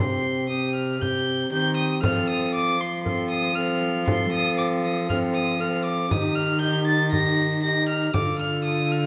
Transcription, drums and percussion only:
1.02 frame drum
2.04 frame drum
3.06 frame drum
4.07 frame drum
5.10 frame drum
6.11 frame drum
7.13 frame drum
8.14 frame drum

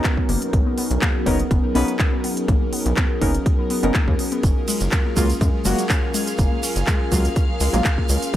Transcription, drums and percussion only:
0.04 kick, clap, closed hi-hat
0.17 kick
0.29 open hi-hat
0.42 closed hi-hat
0.53 kick, closed hi-hat
0.78 open hi-hat
0.91 closed hi-hat
1.02 kick, clap, closed hi-hat
1.26 kick, open hi-hat
1.39 closed hi-hat
1.51 kick, closed hi-hat
1.75 open hi-hat
1.88 closed hi-hat
1.99 kick, clap, closed hi-hat
2.24 open hi-hat
2.37 closed hi-hat
2.48 kick, closed hi-hat
2.73 open hi-hat
2.86 closed hi-hat
2.97 kick, clap, closed hi-hat
3.22 kick, open hi-hat
3.35 closed hi-hat
3.46 kick, closed hi-hat
3.70 open hi-hat
3.83 closed hi-hat
3.94 kick, clap, closed hi-hat
4.08 kick
4.19 open hi-hat
4.32 closed hi-hat
4.43 kick, closed hi-hat, shaker
4.68 open hi-hat, ride, shaker
4.80 closed hi-hat, shaker
4.92 kick, clap, closed hi-hat, shaker
5.17 kick, open hi-hat, ride, shaker
5.30 closed hi-hat, shaker
5.41 kick, closed hi-hat, shaker
5.65 open hi-hat, ride, shaker
5.78 closed hi-hat, shaker
5.89 kick, clap, closed hi-hat, shaker
6.14 open hi-hat, ride, shaker
6.27 closed hi-hat, shaker
6.38 kick, closed hi-hat, shaker
6.63 open hi-hat, ride, shaker
6.76 closed hi-hat, shaker
6.87 kick, clap, closed hi-hat, shaker
7.12 kick, open hi-hat, ride, shaker
7.25 closed hi-hat, shaker
7.36 kick, closed hi-hat, shaker
7.61 open hi-hat, ride, shaker
7.73 closed hi-hat, shaker
7.84 kick, clap, closed hi-hat, shaker
7.98 kick
8.09 open hi-hat, ride, shaker
8.22 closed hi-hat, shaker

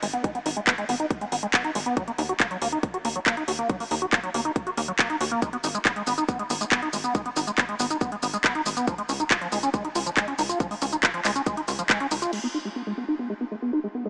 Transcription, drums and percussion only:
0.03 open hi-hat
0.13 closed hi-hat
0.24 kick, closed hi-hat
0.35 closed hi-hat
0.46 open hi-hat
0.57 closed hi-hat
0.67 kick, clap, closed hi-hat
0.78 closed hi-hat
0.89 open hi-hat
1.00 closed hi-hat
1.11 kick, closed hi-hat
1.21 closed hi-hat
1.32 open hi-hat
1.43 closed hi-hat
1.54 kick, clap, closed hi-hat
1.64 closed hi-hat
1.75 open hi-hat
1.97 kick, closed hi-hat
2.08 closed hi-hat
2.18 open hi-hat
2.29 closed hi-hat
2.40 kick, clap, closed hi-hat
2.51 closed hi-hat
2.62 open hi-hat
2.83 kick, closed hi-hat
2.94 closed hi-hat
3.05 open hi-hat
3.16 closed hi-hat
3.26 kick, clap, closed hi-hat
3.37 closed hi-hat
3.48 open hi-hat
3.59 closed hi-hat
3.69 kick, closed hi-hat
3.80 open hi-hat
3.91 open hi-hat
4.13 kick, clap, closed hi-hat
4.23 closed hi-hat
4.34 open hi-hat
4.45 closed hi-hat
4.56 kick, closed hi-hat
4.67 closed hi-hat
4.77 open hi-hat
4.99 kick, clap, closed hi-hat
5.10 closed hi-hat
5.21 open hi-hat
5.31 closed hi-hat
5.42 kick, closed hi-hat, shaker
5.53 closed hi-hat
5.64 open hi-hat, shaker
5.75 closed hi-hat, shaker
5.85 kick, clap, closed hi-hat, shaker
5.96 closed hi-hat
6.07 open hi-hat, shaker
6.18 closed hi-hat, shaker
6.29 kick, closed hi-hat, shaker
6.39 closed hi-hat
6.50 open hi-hat, shaker
6.61 closed hi-hat, shaker
6.72 kick, clap, closed hi-hat, shaker
6.82 closed hi-hat
6.93 open hi-hat, shaker
7.04 shaker
7.15 kick, closed hi-hat, shaker
7.26 closed hi-hat
7.36 open hi-hat, shaker
7.47 closed hi-hat, shaker
7.58 kick, clap, closed hi-hat, shaker
7.69 closed hi-hat
7.80 open hi-hat, shaker
7.90 closed hi-hat, shaker
8.01 kick, closed hi-hat, shaker
8.12 closed hi-hat
8.23 open hi-hat, shaker
8.34 closed hi-hat, shaker
8.44 kick, clap, closed hi-hat, shaker
8.55 closed hi-hat
8.66 open hi-hat, shaker
8.77 closed hi-hat, shaker
8.88 kick, closed hi-hat, shaker
8.98 closed hi-hat
9.09 open hi-hat, shaker
9.20 shaker
9.31 kick, clap, closed hi-hat, shaker
9.41 closed hi-hat
9.52 open hi-hat, shaker
9.63 closed hi-hat, shaker
9.74 kick, closed hi-hat, shaker
9.85 closed hi-hat
9.95 open hi-hat, shaker
10.06 closed hi-hat, shaker
10.17 kick, clap, closed hi-hat, shaker
10.28 closed hi-hat
10.39 open hi-hat, shaker
10.49 closed hi-hat, shaker
10.60 kick, closed hi-hat, shaker
10.71 open hi-hat
10.82 open hi-hat, shaker
10.92 closed hi-hat, shaker
11.03 kick, clap, closed hi-hat, shaker
11.14 closed hi-hat
11.25 clap, open hi-hat, shaker
11.36 shaker
11.46 kick, closed hi-hat, shaker
11.57 closed hi-hat
11.68 open hi-hat, shaker
11.79 closed hi-hat, shaker
11.90 kick, clap, closed hi-hat, shaker
12.00 closed hi-hat
12.11 open hi-hat, shaker
12.22 closed hi-hat, shaker
12.33 crash

